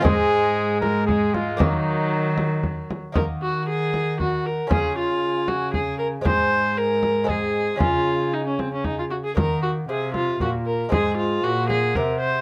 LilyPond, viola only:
\new Staff \with { instrumentName = "Viola" } { \time 3/4 \key ees \dorian \tempo 4 = 116 aes2 aes4 | ges2~ ges8 r8 | bes'8 ges'8 aes'4 ges'8 bes'8 | aes'8 f'4 ges'8 aes'8 bes'8 |
c''4 bes'4 aes'4 | f'4 ees'16 des'16 c'16 des'16 ees'16 f'16 ges'16 aes'16 | bes'8 ges'8 aes'8 f'8 ges'8 bes'8 | aes'8 f'8 ges'8 aes'8 bes'8 c''8 | }